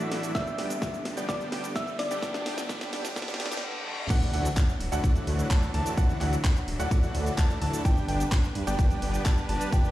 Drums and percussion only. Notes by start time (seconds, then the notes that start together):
0.00 shaker
0.12 snare, open hi-hat
0.23 closed hi-hat, shaker
0.35 kick, snare, closed hi-hat, shaker
0.47 closed hi-hat, shaker
0.58 snare, open hi-hat
0.70 closed hi-hat, shaker
0.82 kick, snare, closed hi-hat, shaker
0.94 closed hi-hat, shaker
1.05 snare, open hi-hat
1.17 closed hi-hat, shaker
1.29 kick, snare, closed hi-hat, shaker
1.40 closed hi-hat, shaker
1.52 snare, open hi-hat
1.64 closed hi-hat, shaker
1.76 kick, snare, closed hi-hat, shaker
1.87 closed hi-hat, shaker
1.99 snare, open hi-hat
2.11 closed hi-hat, shaker
2.22 kick, snare, closed hi-hat, shaker
2.34 snare, closed hi-hat, shaker
2.46 snare, open hi-hat
2.58 snare, closed hi-hat, shaker
2.69 kick, snare, closed hi-hat, shaker
2.81 snare, closed hi-hat, shaker
2.93 snare, open hi-hat
3.05 snare, closed hi-hat, shaker
3.16 kick, snare, closed hi-hat, shaker
3.22 snare
3.28 snare, closed hi-hat, shaker
3.34 snare
3.40 snare, open hi-hat
3.46 snare
3.51 snare, closed hi-hat, shaker
3.57 snare
3.87 high tom
3.98 mid tom
4.10 kick, closed hi-hat, crash, ride, shaker
4.22 shaker
4.34 open hi-hat
4.45 closed hi-hat, shaker
4.57 kick, clap, closed hi-hat, ride, shaker
4.69 shaker
4.80 open hi-hat
4.92 closed hi-hat, shaker
5.04 kick, closed hi-hat, ride, shaker
5.16 closed hi-hat, shaker
5.27 open hi-hat
5.39 closed hi-hat, shaker
5.51 kick, clap, closed hi-hat, ride, shaker
5.63 shaker
5.74 open hi-hat
5.86 closed hi-hat, shaker
5.97 kick, closed hi-hat, ride, shaker
6.10 shaker
6.21 clap, open hi-hat
6.33 closed hi-hat, shaker
6.44 kick, clap, closed hi-hat, ride, shaker
6.57 shaker
6.68 open hi-hat
6.80 closed hi-hat, shaker
6.91 kick, closed hi-hat, ride, shaker
7.03 closed hi-hat, shaker
7.15 open hi-hat
7.26 closed hi-hat, shaker
7.38 kick, clap, closed hi-hat, ride, shaker
7.50 shaker
7.62 open hi-hat
7.73 closed hi-hat, shaker
7.85 kick, closed hi-hat, ride, shaker
7.97 shaker
8.09 open hi-hat
8.20 closed hi-hat, shaker
8.32 kick, clap, closed hi-hat, ride, shaker
8.44 shaker
8.55 open hi-hat
8.67 closed hi-hat, shaker
8.79 kick, closed hi-hat, ride, shaker
8.91 closed hi-hat, shaker
9.02 open hi-hat
9.14 closed hi-hat, shaker
9.26 kick, clap, closed hi-hat, ride, shaker
9.38 shaker
9.49 open hi-hat
9.61 closed hi-hat, shaker
9.72 kick, closed hi-hat, ride, shaker
9.85 shaker